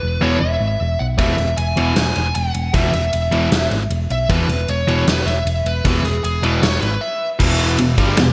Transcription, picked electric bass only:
0, 0, Header, 1, 2, 480
1, 0, Start_track
1, 0, Key_signature, 4, "major"
1, 0, Tempo, 388098
1, 1472, Time_signature, 4, 2, 24, 8
1, 10298, End_track
2, 0, Start_track
2, 0, Title_t, "Picked electric bass"
2, 0, Program_c, 0, 34
2, 35, Note_on_c, 0, 28, 76
2, 217, Note_off_c, 0, 28, 0
2, 275, Note_on_c, 0, 28, 83
2, 457, Note_off_c, 0, 28, 0
2, 518, Note_on_c, 0, 28, 78
2, 699, Note_off_c, 0, 28, 0
2, 747, Note_on_c, 0, 32, 81
2, 933, Note_off_c, 0, 32, 0
2, 998, Note_on_c, 0, 28, 86
2, 1180, Note_off_c, 0, 28, 0
2, 1242, Note_on_c, 0, 35, 83
2, 1423, Note_off_c, 0, 35, 0
2, 1472, Note_on_c, 0, 28, 85
2, 1657, Note_off_c, 0, 28, 0
2, 1710, Note_on_c, 0, 28, 77
2, 1895, Note_off_c, 0, 28, 0
2, 1949, Note_on_c, 0, 28, 83
2, 2135, Note_off_c, 0, 28, 0
2, 2201, Note_on_c, 0, 28, 82
2, 2383, Note_off_c, 0, 28, 0
2, 2430, Note_on_c, 0, 28, 84
2, 2616, Note_off_c, 0, 28, 0
2, 2678, Note_on_c, 0, 28, 84
2, 2861, Note_off_c, 0, 28, 0
2, 2918, Note_on_c, 0, 28, 85
2, 3101, Note_off_c, 0, 28, 0
2, 3151, Note_on_c, 0, 28, 78
2, 3337, Note_off_c, 0, 28, 0
2, 3390, Note_on_c, 0, 28, 89
2, 3576, Note_off_c, 0, 28, 0
2, 3633, Note_on_c, 0, 28, 83
2, 3819, Note_off_c, 0, 28, 0
2, 3881, Note_on_c, 0, 28, 84
2, 4064, Note_off_c, 0, 28, 0
2, 4113, Note_on_c, 0, 28, 87
2, 4299, Note_off_c, 0, 28, 0
2, 4356, Note_on_c, 0, 28, 88
2, 4541, Note_off_c, 0, 28, 0
2, 4587, Note_on_c, 0, 32, 84
2, 4775, Note_off_c, 0, 32, 0
2, 4826, Note_on_c, 0, 28, 90
2, 5015, Note_off_c, 0, 28, 0
2, 5074, Note_on_c, 0, 35, 82
2, 5260, Note_off_c, 0, 35, 0
2, 5313, Note_on_c, 0, 28, 86
2, 5499, Note_off_c, 0, 28, 0
2, 5555, Note_on_c, 0, 28, 80
2, 5740, Note_off_c, 0, 28, 0
2, 5796, Note_on_c, 0, 28, 88
2, 5981, Note_off_c, 0, 28, 0
2, 6028, Note_on_c, 0, 28, 78
2, 6216, Note_off_c, 0, 28, 0
2, 6267, Note_on_c, 0, 28, 79
2, 6456, Note_off_c, 0, 28, 0
2, 6503, Note_on_c, 0, 28, 82
2, 6693, Note_off_c, 0, 28, 0
2, 6743, Note_on_c, 0, 28, 93
2, 6933, Note_off_c, 0, 28, 0
2, 6982, Note_on_c, 0, 28, 80
2, 7172, Note_off_c, 0, 28, 0
2, 7237, Note_on_c, 0, 28, 83
2, 7422, Note_off_c, 0, 28, 0
2, 7462, Note_on_c, 0, 28, 83
2, 7652, Note_off_c, 0, 28, 0
2, 7717, Note_on_c, 0, 28, 81
2, 7901, Note_off_c, 0, 28, 0
2, 7953, Note_on_c, 0, 28, 85
2, 8139, Note_off_c, 0, 28, 0
2, 8194, Note_on_c, 0, 28, 90
2, 8379, Note_off_c, 0, 28, 0
2, 8432, Note_on_c, 0, 32, 85
2, 8617, Note_off_c, 0, 32, 0
2, 9155, Note_on_c, 0, 28, 92
2, 9598, Note_off_c, 0, 28, 0
2, 9639, Note_on_c, 0, 28, 76
2, 9857, Note_off_c, 0, 28, 0
2, 9871, Note_on_c, 0, 31, 96
2, 10092, Note_off_c, 0, 31, 0
2, 10104, Note_on_c, 0, 28, 87
2, 10298, Note_off_c, 0, 28, 0
2, 10298, End_track
0, 0, End_of_file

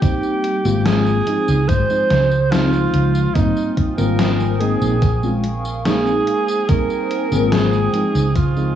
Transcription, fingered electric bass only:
0, 0, Header, 1, 2, 480
1, 0, Start_track
1, 0, Key_signature, -4, "major"
1, 0, Tempo, 833333
1, 13, Time_signature, 4, 2, 24, 8
1, 5042, End_track
2, 0, Start_track
2, 0, Title_t, "Fingered electric bass"
2, 0, Program_c, 0, 33
2, 374, Note_on_c, 0, 32, 98
2, 687, Note_off_c, 0, 32, 0
2, 855, Note_on_c, 0, 37, 85
2, 973, Note_on_c, 0, 32, 88
2, 982, Note_off_c, 0, 37, 0
2, 1065, Note_off_c, 0, 32, 0
2, 1213, Note_on_c, 0, 37, 88
2, 1647, Note_off_c, 0, 37, 0
2, 1693, Note_on_c, 0, 37, 83
2, 1876, Note_off_c, 0, 37, 0
2, 1933, Note_on_c, 0, 32, 98
2, 2025, Note_off_c, 0, 32, 0
2, 2294, Note_on_c, 0, 32, 99
2, 2727, Note_off_c, 0, 32, 0
2, 2773, Note_on_c, 0, 34, 84
2, 3567, Note_off_c, 0, 34, 0
2, 4213, Note_on_c, 0, 32, 99
2, 4527, Note_off_c, 0, 32, 0
2, 4694, Note_on_c, 0, 37, 84
2, 5042, Note_off_c, 0, 37, 0
2, 5042, End_track
0, 0, End_of_file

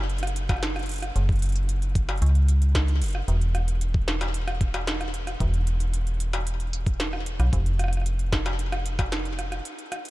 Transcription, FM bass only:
0, 0, Header, 1, 2, 480
1, 0, Start_track
1, 0, Tempo, 530973
1, 1046, Time_signature, 4, 2, 24, 8
1, 9131, End_track
2, 0, Start_track
2, 0, Title_t, "FM bass"
2, 0, Program_c, 0, 39
2, 0, Note_on_c, 0, 30, 104
2, 1005, Note_off_c, 0, 30, 0
2, 1046, Note_on_c, 0, 30, 97
2, 2000, Note_off_c, 0, 30, 0
2, 2006, Note_on_c, 0, 37, 98
2, 2726, Note_on_c, 0, 30, 94
2, 2740, Note_off_c, 0, 37, 0
2, 2914, Note_off_c, 0, 30, 0
2, 2966, Note_on_c, 0, 28, 105
2, 4845, Note_off_c, 0, 28, 0
2, 4886, Note_on_c, 0, 28, 103
2, 6681, Note_off_c, 0, 28, 0
2, 6686, Note_on_c, 0, 35, 94
2, 6780, Note_off_c, 0, 35, 0
2, 6806, Note_on_c, 0, 29, 103
2, 8685, Note_off_c, 0, 29, 0
2, 9131, End_track
0, 0, End_of_file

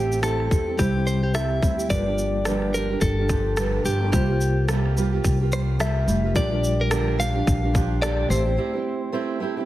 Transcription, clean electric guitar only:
0, 0, Header, 1, 2, 480
1, 0, Start_track
1, 0, Tempo, 557103
1, 1638, Time_signature, 4, 2, 24, 8
1, 8316, End_track
2, 0, Start_track
2, 0, Title_t, "Clean electric guitar"
2, 0, Program_c, 0, 27
2, 0, Note_on_c, 0, 67, 85
2, 162, Note_off_c, 0, 67, 0
2, 202, Note_on_c, 0, 69, 79
2, 679, Note_on_c, 0, 67, 82
2, 694, Note_off_c, 0, 69, 0
2, 920, Note_on_c, 0, 72, 82
2, 1036, Note_off_c, 0, 67, 0
2, 1063, Note_on_c, 0, 67, 67
2, 1157, Note_off_c, 0, 72, 0
2, 1160, Note_on_c, 0, 76, 91
2, 1375, Note_off_c, 0, 67, 0
2, 1634, Note_off_c, 0, 76, 0
2, 1638, Note_on_c, 0, 74, 90
2, 2364, Note_on_c, 0, 70, 75
2, 2380, Note_off_c, 0, 74, 0
2, 2592, Note_off_c, 0, 70, 0
2, 2596, Note_on_c, 0, 69, 85
2, 3318, Note_off_c, 0, 69, 0
2, 3321, Note_on_c, 0, 67, 68
2, 3543, Note_off_c, 0, 67, 0
2, 3553, Note_on_c, 0, 67, 65
2, 4002, Note_off_c, 0, 67, 0
2, 4766, Note_on_c, 0, 72, 82
2, 4830, Note_off_c, 0, 72, 0
2, 5005, Note_on_c, 0, 76, 90
2, 5479, Note_off_c, 0, 76, 0
2, 5483, Note_on_c, 0, 74, 93
2, 5868, Note_on_c, 0, 70, 84
2, 5875, Note_off_c, 0, 74, 0
2, 6201, Note_on_c, 0, 77, 90
2, 6210, Note_off_c, 0, 70, 0
2, 6907, Note_off_c, 0, 77, 0
2, 6911, Note_on_c, 0, 74, 100
2, 7151, Note_off_c, 0, 74, 0
2, 7154, Note_on_c, 0, 72, 80
2, 8316, Note_off_c, 0, 72, 0
2, 8316, End_track
0, 0, End_of_file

